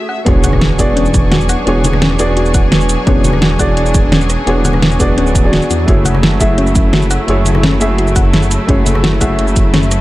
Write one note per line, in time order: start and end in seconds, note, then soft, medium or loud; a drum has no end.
0.00 0.22 A3 medium
0.00 0.23 A3 medium
0.00 0.24 E4 medium
0.00 0.24 F#4 medium
0.00 0.24 G#4 medium
0.00 0.25 G#4 medium
0.00 0.25 C#5 medium
0.00 0.22 E5 medium
0.09 0.26 F#5 loud
0.25 0.78 E1 loud
0.25 10.01 F#3 medium
0.25 0.76 B3 medium
0.25 0.77 D4 medium
0.25 5.84 D4 medium
0.25 0.77 F#4 medium
0.25 0.43 F#4 medium
0.25 5.84 G#4 medium
0.25 0.77 G#4 medium
0.25 0.78 C#5 loud
0.25 5.84 C#6 medium
0.25 kick loud
0.25 closed hi-hat medium
0.25 impact medium
0.44 0.61 F#5 loud
0.44 closed hi-hat medium
0.44 high conga medium
0.44 cabasa medium
0.52 cross-stick soft
0.52 high conga medium
0.61 snare loud
0.61 closed hi-hat medium
0.70 cross-stick soft
0.78 1.57 E1 medium
0.78 0.87 B3 loud
0.78 0.88 D4 medium
0.78 0.88 F#4 medium
0.78 0.88 G#4 medium
0.78 0.88 D5 loud
0.78 kick medium
0.78 closed hi-hat loud
0.78 cabasa medium
0.97 1.12 C#4 medium
0.97 closed hi-hat medium
1.06 cabasa soft
1.14 kick loud
1.14 closed hi-hat loud
1.14 cabasa medium
1.32 1.48 F#4 medium
1.32 snare loud
1.32 closed hi-hat medium
1.41 cabasa soft
1.49 1.66 F#5 loud
1.49 cross-stick soft
1.49 closed hi-hat medium
1.49 cabasa medium
1.65 2.18 E1 loud
1.65 2.17 B3 medium
1.65 2.17 D4 medium
1.65 2.17 F#4 medium
1.65 2.18 G#4 medium
1.65 2.18 C#5 loud
1.65 closed hi-hat medium
1.84 closed hi-hat medium
1.84 high conga loud
1.84 cabasa medium
1.93 cross-stick soft
1.93 high conga loud
2.02 2.18 C#4 medium
2.02 snare loud
2.02 closed hi-hat medium
2.11 cross-stick soft
2.19 2.97 E1 medium
2.19 2.28 B3 loud
2.19 2.28 D4 medium
2.19 2.28 F#4 medium
2.19 2.29 G#4 medium
2.19 2.29 D5 loud
2.19 closed hi-hat medium
2.19 cabasa medium
2.37 2.54 F#4 medium
2.37 closed hi-hat medium
2.46 cabasa soft
2.54 2.71 F#5 loud
2.54 kick loud
2.54 closed hi-hat loud
2.54 cabasa medium
2.72 snare loud
2.72 closed hi-hat medium
2.81 cabasa soft
2.89 closed hi-hat medium
2.89 cabasa medium
3.05 3.58 E1 loud
3.05 3.57 B3 medium
3.05 3.23 C#4 medium
3.05 3.57 D4 medium
3.05 3.58 F#4 medium
3.05 3.58 G#4 medium
3.05 3.58 C#5 loud
3.05 kick loud
3.05 closed hi-hat medium
3.24 closed hi-hat medium
3.24 high conga medium
3.24 cabasa medium
3.33 cross-stick soft
3.33 high conga loud
3.42 3.59 F#4 medium
3.42 snare loud
3.42 closed hi-hat medium
3.51 cross-stick soft
3.59 4.37 E1 medium
3.59 3.68 B3 loud
3.59 3.68 D4 medium
3.59 3.69 F#4 loud
3.59 3.69 G#4 medium
3.59 3.69 D5 loud
3.59 3.76 F#5 loud
3.59 kick medium
3.59 closed hi-hat medium
3.59 cabasa medium
3.77 closed hi-hat medium
3.86 cabasa soft
3.94 kick loud
3.94 closed hi-hat medium
3.94 cabasa medium
4.12 4.28 C#4 medium
4.12 snare loud
4.12 closed hi-hat medium
4.21 cabasa soft
4.30 cross-stick soft
4.30 closed hi-hat medium
4.30 cabasa medium
4.46 4.98 E1 loud
4.46 4.97 B3 medium
4.46 4.98 D4 medium
4.46 4.64 F#4 medium
4.46 4.98 F#4 medium
4.46 4.98 G#4 medium
4.46 4.99 C#5 loud
4.46 closed hi-hat medium
4.65 4.82 F#5 loud
4.65 closed hi-hat medium
4.65 high conga loud
4.65 cabasa medium
4.73 cross-stick soft
4.73 high conga loud
4.82 snare loud
4.82 closed hi-hat medium
4.91 cross-stick soft
4.91 cabasa soft
4.99 5.19 E1 medium
4.99 5.08 B3 loud
4.99 5.09 D4 medium
4.99 5.09 F#4 medium
4.99 5.09 G#4 medium
4.99 5.09 D5 loud
4.99 kick medium
4.99 closed hi-hat medium
4.99 cabasa medium
5.18 5.60 D1 loud
5.18 5.33 C#4 medium
5.18 closed hi-hat medium
5.27 cabasa soft
5.35 kick loud
5.35 closed hi-hat medium
5.35 cabasa medium
5.43 5.85 B3 medium
5.43 5.85 D4 medium
5.43 5.86 F#4 medium
5.43 5.86 G#4 medium
5.43 5.87 D5 loud
5.53 5.69 F#4 loud
5.53 snare loud
5.53 closed hi-hat medium
5.62 cabasa soft
5.70 5.86 E2 medium
5.70 5.86 F#4 medium
5.70 closed hi-hat medium
5.70 cabasa medium
5.86 6.39 F#1 loud
5.86 6.38 A3 medium
5.86 10.01 A3 medium
5.86 6.38 E4 medium
5.86 10.01 E4 medium
5.86 6.04 F#4 medium
5.86 6.38 F#4 medium
5.86 6.39 G#4 medium
5.86 6.39 C#5 loud
5.86 kick loud
5.86 closed hi-hat medium
6.05 6.22 F#5 loud
6.05 closed hi-hat medium
6.05 high conga medium
6.05 cabasa medium
6.15 cross-stick soft
6.15 high conga medium
6.23 snare loud
6.23 closed hi-hat medium
6.32 cross-stick soft
6.40 7.18 F#1 medium
6.40 6.49 A3 loud
6.40 6.49 E4 medium
6.40 6.49 F#4 medium
6.40 6.50 G#4 medium
6.40 6.50 E5 loud
6.40 kick medium
6.40 closed hi-hat medium
6.40 cabasa medium
6.58 6.74 C#4 medium
6.58 closed hi-hat medium
6.67 cabasa soft
6.75 kick loud
6.75 closed hi-hat medium
6.75 cabasa medium
6.93 7.10 F#4 medium
6.93 snare loud
6.93 closed hi-hat medium
7.02 cabasa soft
7.11 7.27 F#5 loud
7.11 cross-stick soft
7.11 closed hi-hat medium
7.11 cabasa medium
7.27 7.79 F#1 loud
7.27 7.78 A3 medium
7.27 7.78 E4 medium
7.27 7.79 F#4 medium
7.27 7.79 G#4 medium
7.27 7.80 C#5 loud
7.27 closed hi-hat medium
7.45 closed hi-hat medium
7.45 high conga medium
7.45 cabasa medium
7.55 cross-stick soft
7.55 high conga loud
7.63 7.79 C#4 medium
7.63 snare loud
7.63 closed hi-hat medium
7.72 cross-stick soft
7.80 8.58 F#1 medium
7.80 7.89 A3 loud
7.80 7.89 E4 medium
7.80 7.90 F#4 medium
7.80 7.90 G#4 medium
7.80 7.90 E5 loud
7.80 closed hi-hat medium
7.80 cabasa medium
7.98 8.15 F#4 medium
7.98 closed hi-hat medium
8.07 cabasa soft
8.16 8.33 F#5 loud
8.16 kick loud
8.16 closed hi-hat medium
8.16 cabasa medium
8.33 snare loud
8.33 closed hi-hat medium
8.43 cabasa soft
8.51 closed hi-hat medium
8.51 cabasa medium
8.67 9.20 F#1 loud
8.67 9.18 A3 loud
8.67 8.84 C#4 medium
8.67 9.19 E4 medium
8.67 9.19 F#4 medium
8.67 9.20 G#4 medium
8.67 9.20 C#5 loud
8.67 kick loud
8.67 closed hi-hat medium
8.86 closed hi-hat medium
8.86 high conga medium
8.86 cabasa medium
8.95 cross-stick soft
8.95 high conga medium
9.04 9.20 F#4 medium
9.04 snare loud
9.04 closed hi-hat medium
9.13 cross-stick soft
9.20 9.99 F#1 medium
9.20 9.29 A3 loud
9.20 9.30 E4 medium
9.20 9.30 F#4 medium
9.20 9.30 G#4 medium
9.20 9.30 E5 loud
9.20 9.38 F#5 loud
9.20 kick medium
9.20 closed hi-hat medium
9.20 cabasa medium
9.39 closed hi-hat medium
9.48 cabasa soft
9.56 kick loud
9.56 closed hi-hat medium
9.56 cabasa medium
9.74 9.90 C#4 medium
9.74 snare loud
9.74 closed hi-hat medium
9.83 cabasa soft
9.91 cross-stick soft
9.91 closed hi-hat loud
9.91 cabasa medium